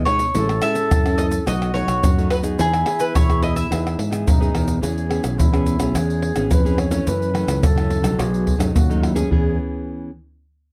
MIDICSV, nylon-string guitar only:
0, 0, Header, 1, 2, 480
1, 0, Start_track
1, 0, Key_signature, 4, "major"
1, 0, Tempo, 560748
1, 294, Time_signature, 4, 2, 24, 8
1, 9181, End_track
2, 0, Start_track
2, 0, Title_t, "Nylon-string guitar"
2, 0, Program_c, 0, 24
2, 0, Note_on_c, 0, 47, 52
2, 55, Note_on_c, 0, 56, 60
2, 63, Note_on_c, 0, 59, 59
2, 64, Note_on_c, 0, 63, 69
2, 210, Note_off_c, 0, 56, 0
2, 212, Note_off_c, 0, 59, 0
2, 214, Note_off_c, 0, 63, 0
2, 275, Note_off_c, 0, 47, 0
2, 301, Note_on_c, 0, 45, 61
2, 305, Note_on_c, 0, 61, 57
2, 306, Note_on_c, 0, 56, 62
2, 309, Note_on_c, 0, 64, 64
2, 440, Note_off_c, 0, 56, 0
2, 441, Note_off_c, 0, 61, 0
2, 442, Note_off_c, 0, 64, 0
2, 536, Note_on_c, 0, 56, 57
2, 540, Note_on_c, 0, 61, 58
2, 542, Note_on_c, 0, 64, 62
2, 755, Note_off_c, 0, 45, 0
2, 761, Note_off_c, 0, 56, 0
2, 763, Note_off_c, 0, 61, 0
2, 763, Note_off_c, 0, 64, 0
2, 778, Note_on_c, 0, 52, 57
2, 909, Note_on_c, 0, 61, 59
2, 913, Note_on_c, 0, 64, 66
2, 1224, Note_off_c, 0, 61, 0
2, 1226, Note_off_c, 0, 64, 0
2, 1233, Note_off_c, 0, 52, 0
2, 1263, Note_on_c, 0, 47, 52
2, 1263, Note_on_c, 0, 54, 48
2, 1269, Note_on_c, 0, 57, 57
2, 1273, Note_on_c, 0, 63, 58
2, 1460, Note_off_c, 0, 54, 0
2, 1464, Note_off_c, 0, 57, 0
2, 1465, Note_off_c, 0, 63, 0
2, 1492, Note_on_c, 0, 54, 54
2, 1496, Note_on_c, 0, 63, 67
2, 1497, Note_on_c, 0, 57, 60
2, 1715, Note_off_c, 0, 47, 0
2, 1719, Note_off_c, 0, 54, 0
2, 1720, Note_off_c, 0, 57, 0
2, 1721, Note_off_c, 0, 63, 0
2, 1742, Note_on_c, 0, 42, 58
2, 1866, Note_on_c, 0, 54, 67
2, 1872, Note_on_c, 0, 57, 63
2, 1874, Note_on_c, 0, 63, 68
2, 2063, Note_off_c, 0, 54, 0
2, 2064, Note_off_c, 0, 57, 0
2, 2067, Note_off_c, 0, 63, 0
2, 2077, Note_on_c, 0, 59, 62
2, 2081, Note_on_c, 0, 63, 64
2, 2086, Note_on_c, 0, 68, 70
2, 2195, Note_off_c, 0, 42, 0
2, 2215, Note_on_c, 0, 52, 59
2, 2408, Note_off_c, 0, 59, 0
2, 2410, Note_off_c, 0, 63, 0
2, 2413, Note_off_c, 0, 68, 0
2, 2450, Note_on_c, 0, 59, 59
2, 2459, Note_on_c, 0, 68, 64
2, 2672, Note_off_c, 0, 52, 0
2, 2695, Note_on_c, 0, 47, 56
2, 2775, Note_off_c, 0, 59, 0
2, 2779, Note_off_c, 0, 68, 0
2, 2815, Note_on_c, 0, 59, 58
2, 2822, Note_on_c, 0, 68, 61
2, 3137, Note_off_c, 0, 59, 0
2, 3141, Note_off_c, 0, 68, 0
2, 3151, Note_off_c, 0, 47, 0
2, 3173, Note_on_c, 0, 52, 56
2, 3174, Note_on_c, 0, 59, 54
2, 3176, Note_on_c, 0, 63, 61
2, 3180, Note_on_c, 0, 68, 61
2, 3399, Note_off_c, 0, 59, 0
2, 3401, Note_off_c, 0, 63, 0
2, 3403, Note_off_c, 0, 68, 0
2, 3512, Note_on_c, 0, 59, 61
2, 3518, Note_on_c, 0, 63, 55
2, 3522, Note_on_c, 0, 68, 60
2, 3630, Note_off_c, 0, 52, 0
2, 3649, Note_on_c, 0, 47, 51
2, 3725, Note_off_c, 0, 59, 0
2, 3728, Note_off_c, 0, 63, 0
2, 3731, Note_off_c, 0, 68, 0
2, 3771, Note_on_c, 0, 59, 68
2, 3774, Note_on_c, 0, 63, 62
2, 3779, Note_on_c, 0, 68, 59
2, 4095, Note_off_c, 0, 59, 0
2, 4097, Note_off_c, 0, 63, 0
2, 4098, Note_off_c, 0, 68, 0
2, 4108, Note_off_c, 0, 47, 0
2, 4120, Note_on_c, 0, 52, 55
2, 4121, Note_on_c, 0, 59, 59
2, 4126, Note_on_c, 0, 61, 60
2, 4130, Note_on_c, 0, 68, 59
2, 4329, Note_off_c, 0, 59, 0
2, 4333, Note_off_c, 0, 61, 0
2, 4333, Note_off_c, 0, 68, 0
2, 4360, Note_on_c, 0, 59, 54
2, 4365, Note_on_c, 0, 61, 57
2, 4369, Note_on_c, 0, 68, 60
2, 4584, Note_off_c, 0, 52, 0
2, 4605, Note_on_c, 0, 47, 55
2, 4689, Note_off_c, 0, 59, 0
2, 4692, Note_off_c, 0, 61, 0
2, 4694, Note_off_c, 0, 68, 0
2, 4730, Note_on_c, 0, 59, 63
2, 4735, Note_on_c, 0, 61, 66
2, 4739, Note_on_c, 0, 68, 63
2, 4934, Note_off_c, 0, 59, 0
2, 4937, Note_off_c, 0, 61, 0
2, 4939, Note_off_c, 0, 68, 0
2, 4953, Note_on_c, 0, 59, 64
2, 4958, Note_on_c, 0, 61, 67
2, 4964, Note_on_c, 0, 68, 70
2, 5066, Note_off_c, 0, 47, 0
2, 5093, Note_on_c, 0, 52, 57
2, 5405, Note_off_c, 0, 59, 0
2, 5408, Note_off_c, 0, 61, 0
2, 5410, Note_off_c, 0, 68, 0
2, 5442, Note_on_c, 0, 59, 61
2, 5442, Note_on_c, 0, 61, 60
2, 5447, Note_on_c, 0, 68, 62
2, 5550, Note_off_c, 0, 52, 0
2, 5566, Note_on_c, 0, 52, 60
2, 5650, Note_off_c, 0, 59, 0
2, 5650, Note_off_c, 0, 61, 0
2, 5653, Note_off_c, 0, 68, 0
2, 5692, Note_on_c, 0, 59, 62
2, 5695, Note_on_c, 0, 61, 60
2, 5700, Note_on_c, 0, 68, 68
2, 5895, Note_off_c, 0, 59, 0
2, 5896, Note_off_c, 0, 61, 0
2, 5899, Note_off_c, 0, 68, 0
2, 5904, Note_off_c, 0, 52, 0
2, 5912, Note_on_c, 0, 52, 61
2, 5916, Note_on_c, 0, 57, 69
2, 5922, Note_on_c, 0, 61, 74
2, 6047, Note_on_c, 0, 42, 63
2, 6246, Note_off_c, 0, 52, 0
2, 6246, Note_off_c, 0, 57, 0
2, 6247, Note_off_c, 0, 61, 0
2, 6280, Note_on_c, 0, 52, 60
2, 6282, Note_on_c, 0, 57, 60
2, 6284, Note_on_c, 0, 61, 65
2, 6507, Note_off_c, 0, 42, 0
2, 6512, Note_off_c, 0, 52, 0
2, 6512, Note_off_c, 0, 57, 0
2, 6514, Note_off_c, 0, 61, 0
2, 6521, Note_on_c, 0, 49, 57
2, 6641, Note_on_c, 0, 52, 61
2, 6646, Note_on_c, 0, 57, 67
2, 6647, Note_on_c, 0, 61, 70
2, 6849, Note_off_c, 0, 52, 0
2, 6850, Note_off_c, 0, 57, 0
2, 6852, Note_off_c, 0, 61, 0
2, 6866, Note_on_c, 0, 54, 66
2, 6870, Note_on_c, 0, 57, 70
2, 6877, Note_on_c, 0, 63, 71
2, 6983, Note_off_c, 0, 49, 0
2, 6997, Note_on_c, 0, 47, 56
2, 7321, Note_off_c, 0, 54, 0
2, 7324, Note_off_c, 0, 57, 0
2, 7325, Note_off_c, 0, 63, 0
2, 7342, Note_on_c, 0, 54, 55
2, 7350, Note_on_c, 0, 57, 60
2, 7353, Note_on_c, 0, 63, 65
2, 7461, Note_off_c, 0, 47, 0
2, 7486, Note_on_c, 0, 42, 57
2, 7559, Note_off_c, 0, 54, 0
2, 7564, Note_off_c, 0, 57, 0
2, 7564, Note_off_c, 0, 63, 0
2, 7615, Note_on_c, 0, 54, 61
2, 7618, Note_on_c, 0, 57, 65
2, 7624, Note_on_c, 0, 63, 70
2, 7816, Note_off_c, 0, 54, 0
2, 7817, Note_off_c, 0, 57, 0
2, 7820, Note_off_c, 0, 63, 0
2, 7831, Note_on_c, 0, 59, 65
2, 7835, Note_on_c, 0, 61, 72
2, 7837, Note_on_c, 0, 68, 73
2, 7945, Note_off_c, 0, 42, 0
2, 7960, Note_off_c, 0, 59, 0
2, 7966, Note_on_c, 0, 52, 64
2, 7967, Note_off_c, 0, 61, 0
2, 7970, Note_on_c, 0, 59, 65
2, 7972, Note_off_c, 0, 68, 0
2, 7977, Note_on_c, 0, 61, 65
2, 7982, Note_on_c, 0, 68, 76
2, 8645, Note_off_c, 0, 52, 0
2, 8645, Note_off_c, 0, 59, 0
2, 8645, Note_off_c, 0, 61, 0
2, 8645, Note_off_c, 0, 68, 0
2, 9181, End_track
0, 0, End_of_file